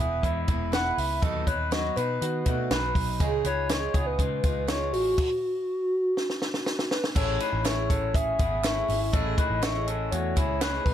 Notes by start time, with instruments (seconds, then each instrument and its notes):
Already playing: soft synth lead E5
0.00 picked electric bass E1, clean electric guitar B3 G#4, steel-string acoustic guitar B3 E4 B4
0.23 picked electric bass E2, clean electric guitar G#3 E4, kick, closed hi-hat
0.48 picked electric bass E1, clean electric guitar G#3 E4, steel-string acoustic guitar B3 E4 B4, kick, closed hi-hat
0.72 steel-string acoustic guitar G#3 B3 E4 B4, clean electric guitar E4 B4, soft synth lead F#5, snare, closed hi-hat
0.98 picked electric bass C#2, soft synth lead E5, open hi-hat
1.22 picked electric bass D#2, steel-string acoustic guitar D#3 F#3 B3 D#4 B4, clean electric guitar D#4 A4, soft synth lead D#5, kick, closed hi-hat
1.47 picked electric bass D#2, steel-string acoustic guitar B3 D#4 B4, clean electric guitar D#4 B4, soft synth lead C#5, kick, closed hi-hat
1.71 steel-string acoustic guitar F#3 B3 D#4 B4, clean electric guitar F#4 C#5, soft synth lead D#5, snare, closed hi-hat
1.96 picked electric bass B2, steel-string acoustic guitar B3 D#4 B4, clean electric guitar D#4 B4, soft synth lead B4, closed hi-hat
2.22 picked electric bass D#3, clean electric guitar B3 F#4, closed hi-hat
2.46 picked electric bass B2, clean electric guitar A3 F#4, steel-string acoustic guitar B3 D#4 B4, kick, closed hi-hat
2.71 picked electric bass B1, steel-string acoustic guitar F#3 B3 D#4 B4, clean electric guitar D#4 B4, snare, closed hi-hat
2.95 picked electric bass B1, kick, open hi-hat
3.20 picked electric bass C#2, steel-string acoustic guitar C#3 G#3 D#4 F4 G#4, clean electric guitar C#4 G#4, kick, closed hi-hat
3.45 picked electric bass C#2, clean electric guitar D#4 B4, steel-string acoustic guitar D#4 F4 G#4, soft synth lead C#5, closed hi-hat
3.69 steel-string acoustic guitar G#3 D#4 F4 G#4, clean electric guitar F4 C#5, snare, closed hi-hat
3.94 picked electric bass C#2, clean electric guitar B3 G#4, steel-string acoustic guitar D#4 F4 G#4, kick, closed hi-hat
4.06 soft synth lead B4
4.19 picked electric bass C#3, clean electric guitar G#3 F4, kick, closed hi-hat
4.43 picked electric bass C#2, clean electric guitar G#3 F4, steel-string acoustic guitar D#4 F4 G#4, kick, closed hi-hat
4.67 steel-string acoustic guitar G#3 D#4 F4 G#4, clean electric guitar F4 C#5, soft synth lead C#5, snare, closed hi-hat
4.93 picked electric bass A1, soft synth lead F#4, open hi-hat
5.18 kick, crash
6.17 snare
6.30 snare
6.42 snare
6.54 snare
6.66 snare
6.79 snare
6.91 soft synth lead B4, snare
7.04 snare
7.15 picked electric bass A1, steel-string acoustic guitar A3 C#4 E4 G#4, clean electric guitar C#4 A4, soft synth lead C#5, kick, crash
7.40 clean electric guitar D#4 B4, closed hi-hat
7.53 picked electric bass A1
7.64 steel-string acoustic guitar A3 C#4 E4 G#4, clean electric guitar E4 C#5, soft synth lead C#5, snare, clap, closed hi-hat
7.90 clean electric guitar C#4 A4, kick, closed hi-hat
8.14 clean electric guitar C#4 G#4, soft synth lead E5, kick, closed hi-hat
8.39 picked electric bass G#1, clean electric guitar B3 G#4, steel-string acoustic guitar C#4 E4 G#4, kick, closed hi-hat
8.63 steel-string acoustic guitar A3 C#4 E4 G#4, clean electric guitar E4 C#5, snare, clap, closed hi-hat
8.88 picked electric bass G#1, steel-string acoustic guitar C#4 E4 G#4, open hi-hat
9.13 picked electric bass A1, steel-string acoustic guitar A3 C#4 E4 G#4, clean electric guitar C#4 A4, soft synth lead D#5, kick, closed hi-hat
9.38 clean electric guitar D#4 B4, kick, closed hi-hat
9.50 picked electric bass A1
9.62 steel-string acoustic guitar A3 C#4 E4 G#4, clean electric guitar E4 C#5, snare, clap, closed hi-hat
9.87 clean electric guitar C#4 A4, closed hi-hat
10.11 picked electric bass E2, clean electric guitar A3 F#4, soft synth lead C#5, closed hi-hat
10.36 picked electric bass C#2, clean electric guitar G#3 E4, steel-string acoustic guitar C#4 E4 G#4, kick, closed hi-hat
10.61 steel-string acoustic guitar A3 C#4 E4 G#4, clean electric guitar D#4 B4, snare, clap, closed hi-hat
10.85 picked electric bass B1, steel-string acoustic guitar B3 D#4 A4, soft synth lead B4, kick, open hi-hat
10.89 steel-string acoustic guitar F#3